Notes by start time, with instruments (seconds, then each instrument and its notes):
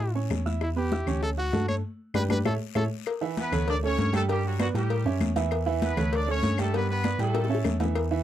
Already playing: tine electric piano A2, trumpet A4
0.00 high bongo, high conga, long guiro
0.15 upright piano C#4 C#5 C#6, high conga
0.30 tine electric piano E2, high bongo, low bongo, high conga, short guiro, claves
0.46 upright piano E4 E5 E6, high bongo, high conga, short guiro
0.61 trumpet E4, high bongo, high conga, long guiro, claves
0.76 upright piano B3 B4 B5, trumpet G4, high conga
0.92 upright piano E4 E5 E6, high bongo, high conga, short guiro
1.06 tine electric piano D2, upright piano C#4 C#5 C#6, high conga, low conga, short guiro, claves
1.22 trumpet A4, high bongo, high conga, long guiro
1.37 upright piano F#4 F#5 F#6, trumpet F#4, high conga
1.53 tine electric piano G2, upright piano A3 A4 A5, high bongo, low bongo, high conga, short guiro
1.68 trumpet C#5, high conga, short guiro, claves
2.14 tine electric piano G2, upright piano G4 B4 D5, trumpet B4, high bongo, high conga, long guiro, claves
2.29 tine electric piano G2, upright piano G4 B4 D5, trumpet B4, high bongo, high conga, long guiro, claves
2.45 tine electric piano A2, upright piano A4 C#5 E5, trumpet A4, high bongo, high conga, long guiro, claves
2.75 tine electric piano A2, upright piano A4 C#5 E5, trumpet A4, high bongo, high conga, long guiro, claves
3.06 cowbell, high conga, long guiro, claves
3.21 upright piano E3 E4 E5, high conga
3.37 horn section B3 B4, cowbell, high conga, short guiro
3.52 tine electric piano D2, upright piano A3 A4 C#5, cowbell, high conga, low conga, short guiro, claves
3.68 horn section D4 D5, cowbell, high conga, long guiro
3.83 upright piano A3 A4 C#5, horn section C#4 C#5, high conga
3.98 tine electric piano G2, cowbell, high conga, short guiro
4.13 upright piano G3 G4 G5, horn section A3 A4, cowbell, high conga, short guiro, claves
4.28 upright piano G3 G4 G5, horn section G3 G4, cowbell, high conga, long guiro
4.44 horn section F#3 F#4, high conga
4.59 horn section F#3 F#4, upright piano B3 B4 D5, cowbell, high conga, short guiro, claves
4.74 tine electric piano A2, upright piano G3 G4 G5, horn section G3 G4, cowbell, short guiro
4.90 cowbell, high conga, long guiro
5.05 tine electric piano F#2, upright piano C#4 C#5 E5, high conga
5.20 tine electric piano E2, cowbell, high conga, short guiro, claves
5.36 upright piano E3 E4 E5, cowbell, high conga, short guiro
5.51 cowbell, high conga, long guiro, claves
5.66 upright piano E3 E4 E5, high conga
5.82 horn section B3 B4, cowbell, high conga, short guiro
5.97 tine electric piano D2, upright piano A3 A4 C#5, cowbell, high conga, low conga, short guiro, claves
6.13 horn section D4 D5, cowbell, high conga, long guiro
6.28 upright piano A3 A4 C#5, horn section C#4 C#5, high conga
6.42 tine electric piano G2, cowbell, high conga, short guiro
6.58 upright piano G3 G4 G5, horn section A3 A4, cowbell, high conga, short guiro, claves
6.74 upright piano G3 G4 G5, horn section B3 B4, cowbell, high conga, long guiro
6.89 horn section B3 B4, high conga
7.04 upright piano B3 B4 D5, cowbell, high conga, short guiro, claves
7.19 tine electric piano A2, upright piano G3 G4 G5, horn section A3 A4, cowbell, short guiro
7.35 cowbell, high bongo, high conga, long guiro
7.45 high bongo
7.49 upright piano C#4 C#5 E5, high conga
7.55 high bongo
7.64 tine electric piano E2, cowbell, low bongo, high conga, short guiro, claves
7.80 upright piano E3 E4 E5, cowbell, high conga, short guiro
7.85 low bongo
7.95 cowbell, high conga, long guiro, claves
8.11 upright piano E3 E4 E5, high conga